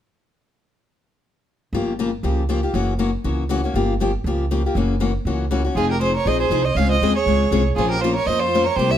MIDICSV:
0, 0, Header, 1, 5, 480
1, 0, Start_track
1, 0, Tempo, 251678
1, 3315, Time_signature, 4, 2, 24, 8
1, 17123, End_track
2, 0, Start_track
2, 0, Title_t, "Violin"
2, 0, Program_c, 0, 40
2, 10990, Note_on_c, 0, 68, 82
2, 11243, Note_off_c, 0, 68, 0
2, 11281, Note_on_c, 0, 70, 69
2, 11466, Note_off_c, 0, 70, 0
2, 11487, Note_on_c, 0, 72, 78
2, 11732, Note_off_c, 0, 72, 0
2, 11767, Note_on_c, 0, 73, 72
2, 11971, Note_on_c, 0, 75, 82
2, 11999, Note_off_c, 0, 73, 0
2, 12198, Note_off_c, 0, 75, 0
2, 12210, Note_on_c, 0, 72, 72
2, 12685, Note_on_c, 0, 75, 73
2, 12714, Note_off_c, 0, 72, 0
2, 12904, Note_on_c, 0, 77, 87
2, 12933, Note_off_c, 0, 75, 0
2, 13171, Note_off_c, 0, 77, 0
2, 13182, Note_on_c, 0, 75, 83
2, 13628, Note_off_c, 0, 75, 0
2, 13657, Note_on_c, 0, 73, 83
2, 14552, Note_off_c, 0, 73, 0
2, 14794, Note_on_c, 0, 68, 84
2, 15063, Note_off_c, 0, 68, 0
2, 15078, Note_on_c, 0, 70, 82
2, 15292, Note_on_c, 0, 72, 73
2, 15321, Note_off_c, 0, 70, 0
2, 15545, Note_off_c, 0, 72, 0
2, 15557, Note_on_c, 0, 73, 79
2, 15768, Note_on_c, 0, 75, 86
2, 15797, Note_off_c, 0, 73, 0
2, 16024, Note_on_c, 0, 72, 85
2, 16052, Note_off_c, 0, 75, 0
2, 16518, Note_on_c, 0, 73, 77
2, 16546, Note_off_c, 0, 72, 0
2, 16712, Note_on_c, 0, 72, 93
2, 16741, Note_off_c, 0, 73, 0
2, 16994, Note_on_c, 0, 76, 91
2, 17023, Note_off_c, 0, 72, 0
2, 17123, Note_off_c, 0, 76, 0
2, 17123, End_track
3, 0, Start_track
3, 0, Title_t, "Violin"
3, 0, Program_c, 1, 40
3, 10967, Note_on_c, 1, 65, 64
3, 11231, Note_off_c, 1, 65, 0
3, 11239, Note_on_c, 1, 67, 58
3, 11443, Note_off_c, 1, 67, 0
3, 11478, Note_on_c, 1, 68, 58
3, 11714, Note_off_c, 1, 68, 0
3, 11725, Note_on_c, 1, 70, 60
3, 11917, Note_on_c, 1, 72, 65
3, 11945, Note_off_c, 1, 70, 0
3, 12187, Note_off_c, 1, 72, 0
3, 12198, Note_on_c, 1, 68, 69
3, 12643, Note_on_c, 1, 72, 69
3, 12672, Note_off_c, 1, 68, 0
3, 12846, Note_on_c, 1, 73, 73
3, 12875, Note_off_c, 1, 72, 0
3, 13109, Note_off_c, 1, 73, 0
3, 13120, Note_on_c, 1, 72, 66
3, 13595, Note_off_c, 1, 72, 0
3, 13610, Note_on_c, 1, 68, 69
3, 14527, Note_off_c, 1, 68, 0
3, 14795, Note_on_c, 1, 65, 71
3, 15024, Note_off_c, 1, 65, 0
3, 15035, Note_on_c, 1, 67, 61
3, 15251, Note_on_c, 1, 65, 69
3, 15280, Note_off_c, 1, 67, 0
3, 15488, Note_off_c, 1, 65, 0
3, 15500, Note_on_c, 1, 70, 67
3, 15749, Note_on_c, 1, 72, 74
3, 15778, Note_off_c, 1, 70, 0
3, 16015, Note_on_c, 1, 65, 75
3, 16043, Note_off_c, 1, 72, 0
3, 16479, Note_on_c, 1, 70, 70
3, 16508, Note_off_c, 1, 65, 0
3, 16708, Note_on_c, 1, 67, 74
3, 16736, Note_off_c, 1, 70, 0
3, 16971, Note_on_c, 1, 72, 71
3, 16999, Note_off_c, 1, 67, 0
3, 17123, Note_off_c, 1, 72, 0
3, 17123, End_track
4, 0, Start_track
4, 0, Title_t, "Steel-string acoustic guitar"
4, 0, Program_c, 2, 25
4, 3323, Note_on_c, 2, 49, 55
4, 3330, Note_on_c, 2, 53, 58
4, 3330, Note_on_c, 2, 65, 62
4, 3331, Note_on_c, 2, 58, 68
4, 3335, Note_on_c, 2, 67, 63
4, 3664, Note_off_c, 2, 49, 0
4, 3667, Note_off_c, 2, 65, 0
4, 3668, Note_off_c, 2, 53, 0
4, 3668, Note_off_c, 2, 58, 0
4, 3670, Note_off_c, 2, 67, 0
4, 3796, Note_on_c, 2, 49, 79
4, 3802, Note_on_c, 2, 53, 66
4, 3809, Note_on_c, 2, 58, 79
4, 3810, Note_on_c, 2, 67, 76
4, 3814, Note_on_c, 2, 65, 71
4, 3990, Note_off_c, 2, 49, 0
4, 3993, Note_off_c, 2, 53, 0
4, 3996, Note_off_c, 2, 58, 0
4, 3997, Note_off_c, 2, 67, 0
4, 3999, Note_off_c, 2, 65, 0
4, 4263, Note_on_c, 2, 49, 58
4, 4271, Note_on_c, 2, 53, 58
4, 4275, Note_on_c, 2, 58, 58
4, 4281, Note_on_c, 2, 65, 61
4, 4281, Note_on_c, 2, 67, 58
4, 4614, Note_off_c, 2, 49, 0
4, 4618, Note_off_c, 2, 53, 0
4, 4620, Note_off_c, 2, 58, 0
4, 4623, Note_off_c, 2, 65, 0
4, 4623, Note_off_c, 2, 67, 0
4, 4745, Note_on_c, 2, 49, 68
4, 4754, Note_on_c, 2, 53, 69
4, 4759, Note_on_c, 2, 58, 80
4, 4763, Note_on_c, 2, 65, 83
4, 4774, Note_on_c, 2, 67, 73
4, 4944, Note_off_c, 2, 49, 0
4, 4949, Note_off_c, 2, 53, 0
4, 4951, Note_off_c, 2, 58, 0
4, 4953, Note_off_c, 2, 65, 0
4, 4959, Note_off_c, 2, 67, 0
4, 5018, Note_on_c, 2, 67, 48
4, 5032, Note_on_c, 2, 65, 44
4, 5054, Note_on_c, 2, 58, 37
4, 5220, Note_off_c, 2, 58, 0
4, 5222, Note_off_c, 2, 67, 0
4, 5225, Note_on_c, 2, 52, 65
4, 5226, Note_on_c, 2, 49, 59
4, 5229, Note_off_c, 2, 65, 0
4, 5243, Note_on_c, 2, 58, 61
4, 5243, Note_on_c, 2, 61, 62
4, 5253, Note_on_c, 2, 66, 76
4, 5575, Note_off_c, 2, 52, 0
4, 5576, Note_off_c, 2, 49, 0
4, 5584, Note_off_c, 2, 58, 0
4, 5584, Note_off_c, 2, 61, 0
4, 5589, Note_off_c, 2, 66, 0
4, 5696, Note_on_c, 2, 49, 68
4, 5701, Note_on_c, 2, 52, 75
4, 5705, Note_on_c, 2, 58, 77
4, 5712, Note_on_c, 2, 61, 73
4, 5717, Note_on_c, 2, 66, 84
4, 5900, Note_off_c, 2, 49, 0
4, 5902, Note_off_c, 2, 52, 0
4, 5904, Note_off_c, 2, 58, 0
4, 5908, Note_off_c, 2, 61, 0
4, 5910, Note_off_c, 2, 66, 0
4, 6185, Note_on_c, 2, 49, 56
4, 6187, Note_on_c, 2, 58, 59
4, 6188, Note_on_c, 2, 52, 63
4, 6192, Note_on_c, 2, 61, 60
4, 6199, Note_on_c, 2, 66, 68
4, 6535, Note_off_c, 2, 49, 0
4, 6536, Note_off_c, 2, 58, 0
4, 6537, Note_off_c, 2, 52, 0
4, 6538, Note_off_c, 2, 61, 0
4, 6542, Note_off_c, 2, 66, 0
4, 6660, Note_on_c, 2, 49, 69
4, 6670, Note_on_c, 2, 52, 79
4, 6680, Note_on_c, 2, 58, 75
4, 6686, Note_on_c, 2, 61, 90
4, 6688, Note_on_c, 2, 66, 91
4, 6861, Note_off_c, 2, 49, 0
4, 6867, Note_off_c, 2, 52, 0
4, 6872, Note_off_c, 2, 58, 0
4, 6875, Note_off_c, 2, 61, 0
4, 6876, Note_off_c, 2, 66, 0
4, 6938, Note_on_c, 2, 66, 51
4, 6957, Note_on_c, 2, 61, 44
4, 6967, Note_on_c, 2, 58, 44
4, 7140, Note_off_c, 2, 58, 0
4, 7141, Note_off_c, 2, 66, 0
4, 7151, Note_off_c, 2, 61, 0
4, 7155, Note_on_c, 2, 49, 63
4, 7161, Note_on_c, 2, 53, 60
4, 7163, Note_on_c, 2, 58, 68
4, 7164, Note_on_c, 2, 67, 66
4, 7168, Note_on_c, 2, 65, 71
4, 7500, Note_off_c, 2, 49, 0
4, 7503, Note_off_c, 2, 53, 0
4, 7503, Note_off_c, 2, 58, 0
4, 7504, Note_off_c, 2, 67, 0
4, 7506, Note_off_c, 2, 65, 0
4, 7632, Note_on_c, 2, 49, 66
4, 7646, Note_on_c, 2, 53, 76
4, 7650, Note_on_c, 2, 58, 76
4, 7651, Note_on_c, 2, 65, 74
4, 7661, Note_on_c, 2, 67, 80
4, 7828, Note_off_c, 2, 49, 0
4, 7834, Note_off_c, 2, 53, 0
4, 7836, Note_off_c, 2, 58, 0
4, 7836, Note_off_c, 2, 65, 0
4, 7842, Note_off_c, 2, 67, 0
4, 8132, Note_on_c, 2, 53, 54
4, 8133, Note_on_c, 2, 49, 58
4, 8141, Note_on_c, 2, 58, 58
4, 8148, Note_on_c, 2, 65, 66
4, 8152, Note_on_c, 2, 67, 61
4, 8468, Note_off_c, 2, 49, 0
4, 8468, Note_off_c, 2, 53, 0
4, 8472, Note_off_c, 2, 58, 0
4, 8476, Note_off_c, 2, 65, 0
4, 8478, Note_off_c, 2, 67, 0
4, 8600, Note_on_c, 2, 49, 73
4, 8604, Note_on_c, 2, 65, 82
4, 8605, Note_on_c, 2, 58, 74
4, 8608, Note_on_c, 2, 53, 75
4, 8616, Note_on_c, 2, 67, 85
4, 8791, Note_off_c, 2, 49, 0
4, 8793, Note_off_c, 2, 58, 0
4, 8793, Note_off_c, 2, 65, 0
4, 8795, Note_off_c, 2, 53, 0
4, 8799, Note_off_c, 2, 67, 0
4, 8889, Note_on_c, 2, 67, 54
4, 8898, Note_on_c, 2, 65, 46
4, 8912, Note_on_c, 2, 58, 44
4, 9077, Note_off_c, 2, 67, 0
4, 9078, Note_off_c, 2, 58, 0
4, 9081, Note_off_c, 2, 65, 0
4, 9084, Note_on_c, 2, 49, 65
4, 9086, Note_on_c, 2, 52, 58
4, 9097, Note_on_c, 2, 61, 60
4, 9101, Note_on_c, 2, 58, 60
4, 9104, Note_on_c, 2, 66, 69
4, 9423, Note_off_c, 2, 49, 0
4, 9424, Note_off_c, 2, 52, 0
4, 9430, Note_off_c, 2, 61, 0
4, 9432, Note_off_c, 2, 58, 0
4, 9433, Note_off_c, 2, 66, 0
4, 9537, Note_on_c, 2, 49, 72
4, 9543, Note_on_c, 2, 52, 70
4, 9552, Note_on_c, 2, 61, 77
4, 9553, Note_on_c, 2, 58, 77
4, 9558, Note_on_c, 2, 66, 74
4, 9739, Note_off_c, 2, 49, 0
4, 9742, Note_off_c, 2, 52, 0
4, 9746, Note_off_c, 2, 61, 0
4, 9747, Note_off_c, 2, 58, 0
4, 9749, Note_off_c, 2, 66, 0
4, 10042, Note_on_c, 2, 49, 58
4, 10044, Note_on_c, 2, 52, 53
4, 10046, Note_on_c, 2, 66, 61
4, 10047, Note_on_c, 2, 58, 63
4, 10052, Note_on_c, 2, 61, 64
4, 10382, Note_off_c, 2, 49, 0
4, 10383, Note_off_c, 2, 52, 0
4, 10384, Note_off_c, 2, 58, 0
4, 10384, Note_off_c, 2, 66, 0
4, 10387, Note_off_c, 2, 61, 0
4, 10504, Note_on_c, 2, 49, 74
4, 10504, Note_on_c, 2, 52, 73
4, 10514, Note_on_c, 2, 58, 78
4, 10522, Note_on_c, 2, 61, 84
4, 10525, Note_on_c, 2, 66, 72
4, 10702, Note_off_c, 2, 49, 0
4, 10702, Note_off_c, 2, 52, 0
4, 10707, Note_off_c, 2, 58, 0
4, 10711, Note_off_c, 2, 61, 0
4, 10713, Note_off_c, 2, 66, 0
4, 10766, Note_on_c, 2, 66, 51
4, 10798, Note_on_c, 2, 58, 39
4, 10798, Note_on_c, 2, 61, 45
4, 10974, Note_off_c, 2, 66, 0
4, 10990, Note_off_c, 2, 58, 0
4, 10990, Note_off_c, 2, 61, 0
4, 11001, Note_on_c, 2, 53, 61
4, 11002, Note_on_c, 2, 60, 64
4, 11013, Note_on_c, 2, 63, 59
4, 11017, Note_on_c, 2, 68, 73
4, 11341, Note_off_c, 2, 53, 0
4, 11342, Note_off_c, 2, 60, 0
4, 11347, Note_off_c, 2, 63, 0
4, 11349, Note_off_c, 2, 68, 0
4, 11460, Note_on_c, 2, 53, 76
4, 11461, Note_on_c, 2, 60, 77
4, 11466, Note_on_c, 2, 63, 70
4, 11467, Note_on_c, 2, 68, 80
4, 11660, Note_off_c, 2, 53, 0
4, 11660, Note_off_c, 2, 60, 0
4, 11663, Note_off_c, 2, 63, 0
4, 11664, Note_off_c, 2, 68, 0
4, 11932, Note_on_c, 2, 53, 54
4, 11951, Note_on_c, 2, 60, 59
4, 11957, Note_on_c, 2, 63, 61
4, 11958, Note_on_c, 2, 68, 64
4, 12286, Note_off_c, 2, 53, 0
4, 12296, Note_off_c, 2, 60, 0
4, 12299, Note_off_c, 2, 63, 0
4, 12300, Note_off_c, 2, 68, 0
4, 12408, Note_on_c, 2, 53, 73
4, 12421, Note_on_c, 2, 60, 80
4, 12430, Note_on_c, 2, 68, 88
4, 12434, Note_on_c, 2, 63, 82
4, 12614, Note_off_c, 2, 53, 0
4, 12620, Note_off_c, 2, 60, 0
4, 12625, Note_off_c, 2, 68, 0
4, 12627, Note_off_c, 2, 63, 0
4, 12916, Note_on_c, 2, 49, 65
4, 12919, Note_on_c, 2, 56, 58
4, 12927, Note_on_c, 2, 60, 68
4, 12935, Note_on_c, 2, 65, 68
4, 12941, Note_on_c, 2, 68, 70
4, 13258, Note_off_c, 2, 49, 0
4, 13260, Note_off_c, 2, 56, 0
4, 13264, Note_off_c, 2, 60, 0
4, 13268, Note_off_c, 2, 65, 0
4, 13271, Note_off_c, 2, 68, 0
4, 13397, Note_on_c, 2, 49, 71
4, 13400, Note_on_c, 2, 56, 73
4, 13408, Note_on_c, 2, 68, 75
4, 13409, Note_on_c, 2, 60, 77
4, 13411, Note_on_c, 2, 65, 82
4, 13588, Note_off_c, 2, 49, 0
4, 13590, Note_off_c, 2, 56, 0
4, 13594, Note_off_c, 2, 60, 0
4, 13594, Note_off_c, 2, 68, 0
4, 13595, Note_off_c, 2, 65, 0
4, 13866, Note_on_c, 2, 56, 59
4, 13871, Note_on_c, 2, 49, 62
4, 13874, Note_on_c, 2, 60, 63
4, 13878, Note_on_c, 2, 65, 65
4, 13886, Note_on_c, 2, 68, 66
4, 14213, Note_off_c, 2, 56, 0
4, 14216, Note_off_c, 2, 49, 0
4, 14217, Note_off_c, 2, 60, 0
4, 14220, Note_off_c, 2, 65, 0
4, 14224, Note_off_c, 2, 68, 0
4, 14339, Note_on_c, 2, 49, 77
4, 14344, Note_on_c, 2, 60, 87
4, 14348, Note_on_c, 2, 65, 82
4, 14350, Note_on_c, 2, 56, 79
4, 14354, Note_on_c, 2, 68, 93
4, 14539, Note_off_c, 2, 49, 0
4, 14542, Note_off_c, 2, 60, 0
4, 14544, Note_off_c, 2, 65, 0
4, 14545, Note_off_c, 2, 56, 0
4, 14547, Note_off_c, 2, 68, 0
4, 14837, Note_on_c, 2, 53, 63
4, 14844, Note_on_c, 2, 58, 69
4, 14845, Note_on_c, 2, 61, 69
4, 14853, Note_on_c, 2, 65, 70
4, 14857, Note_on_c, 2, 72, 74
4, 15179, Note_off_c, 2, 53, 0
4, 15183, Note_off_c, 2, 58, 0
4, 15183, Note_off_c, 2, 61, 0
4, 15187, Note_off_c, 2, 65, 0
4, 15189, Note_off_c, 2, 72, 0
4, 15329, Note_on_c, 2, 53, 70
4, 15335, Note_on_c, 2, 58, 75
4, 15338, Note_on_c, 2, 65, 83
4, 15340, Note_on_c, 2, 61, 70
4, 15350, Note_on_c, 2, 72, 82
4, 15514, Note_off_c, 2, 53, 0
4, 15517, Note_off_c, 2, 58, 0
4, 15519, Note_off_c, 2, 65, 0
4, 15520, Note_off_c, 2, 61, 0
4, 15525, Note_off_c, 2, 72, 0
4, 15792, Note_on_c, 2, 53, 56
4, 15793, Note_on_c, 2, 58, 57
4, 15800, Note_on_c, 2, 61, 57
4, 15806, Note_on_c, 2, 72, 64
4, 15808, Note_on_c, 2, 65, 62
4, 16137, Note_off_c, 2, 53, 0
4, 16138, Note_off_c, 2, 58, 0
4, 16141, Note_off_c, 2, 61, 0
4, 16144, Note_off_c, 2, 72, 0
4, 16145, Note_off_c, 2, 65, 0
4, 16298, Note_on_c, 2, 58, 75
4, 16302, Note_on_c, 2, 53, 80
4, 16308, Note_on_c, 2, 65, 78
4, 16314, Note_on_c, 2, 61, 80
4, 16317, Note_on_c, 2, 72, 85
4, 16480, Note_off_c, 2, 58, 0
4, 16481, Note_off_c, 2, 53, 0
4, 16484, Note_off_c, 2, 65, 0
4, 16488, Note_off_c, 2, 61, 0
4, 16489, Note_off_c, 2, 72, 0
4, 16757, Note_on_c, 2, 48, 64
4, 16769, Note_on_c, 2, 58, 64
4, 16771, Note_on_c, 2, 55, 62
4, 16771, Note_on_c, 2, 64, 65
4, 16787, Note_on_c, 2, 67, 67
4, 17100, Note_off_c, 2, 48, 0
4, 17106, Note_off_c, 2, 58, 0
4, 17107, Note_off_c, 2, 55, 0
4, 17107, Note_off_c, 2, 64, 0
4, 17115, Note_off_c, 2, 67, 0
4, 17123, End_track
5, 0, Start_track
5, 0, Title_t, "Upright bass"
5, 0, Program_c, 3, 32
5, 3292, Note_on_c, 3, 31, 79
5, 4069, Note_off_c, 3, 31, 0
5, 4255, Note_on_c, 3, 37, 69
5, 5030, Note_off_c, 3, 37, 0
5, 5218, Note_on_c, 3, 30, 79
5, 5992, Note_off_c, 3, 30, 0
5, 6187, Note_on_c, 3, 37, 66
5, 6957, Note_off_c, 3, 37, 0
5, 7135, Note_on_c, 3, 31, 77
5, 7910, Note_off_c, 3, 31, 0
5, 8090, Note_on_c, 3, 37, 70
5, 8866, Note_off_c, 3, 37, 0
5, 9060, Note_on_c, 3, 30, 84
5, 9833, Note_off_c, 3, 30, 0
5, 10013, Note_on_c, 3, 37, 73
5, 10788, Note_off_c, 3, 37, 0
5, 10968, Note_on_c, 3, 29, 85
5, 11744, Note_off_c, 3, 29, 0
5, 11924, Note_on_c, 3, 34, 67
5, 12343, Note_off_c, 3, 34, 0
5, 12399, Note_on_c, 3, 36, 72
5, 12820, Note_off_c, 3, 36, 0
5, 12875, Note_on_c, 3, 37, 82
5, 13273, Note_off_c, 3, 37, 0
5, 13368, Note_on_c, 3, 39, 71
5, 13785, Note_off_c, 3, 39, 0
5, 13841, Note_on_c, 3, 37, 73
5, 14261, Note_off_c, 3, 37, 0
5, 14327, Note_on_c, 3, 36, 79
5, 14745, Note_off_c, 3, 36, 0
5, 14802, Note_on_c, 3, 34, 84
5, 15581, Note_off_c, 3, 34, 0
5, 15762, Note_on_c, 3, 41, 66
5, 16542, Note_off_c, 3, 41, 0
5, 16715, Note_on_c, 3, 36, 89
5, 17123, Note_off_c, 3, 36, 0
5, 17123, End_track
0, 0, End_of_file